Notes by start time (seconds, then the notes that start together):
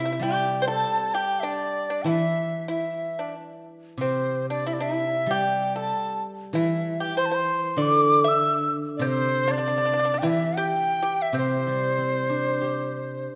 Already playing: C3 E5
0.05 E4
0.12 E4
0.20 G3 G4 G5
0.62 C5
0.68 A4 A5
1.14 G4 G5
1.40 D4 E5
1.44 D5
1.90 D4
2.02 E3 E4 G5
2.08 E5
2.68 E4 E5
3.19 D4
3.98 C3 C4
4.02 C5
4.50 D4 D5
4.66 E4 E5
4.73 D5
4.80 E4 E5
5.26 G3
5.31 G4 G5
5.76 A4
5.80 A5
6.53 E3 E4
6.57 E5
7.00 G4 G5
7.17 C5 C6
7.26 A5
7.31 C5 C6
7.77 D3 D5
7.82 D6
8.24 E5
8.28 E6
8.97 C3 D5
9.01 C4
9.06 C5
9.48 D4 D5
9.53 D4
9.58 D4
9.68 D4
9.78 D4
9.85 D4
9.93 D4
9.99 D4
10.05 D4
10.14 D4
10.19 E3 G5
10.23 E4
10.28 E5
10.57 G4 G5
11.03 G4
11.22 E5
11.33 C3 C4
11.38 C5
11.67 G3
11.98 C4
12.29 D4
12.61 G4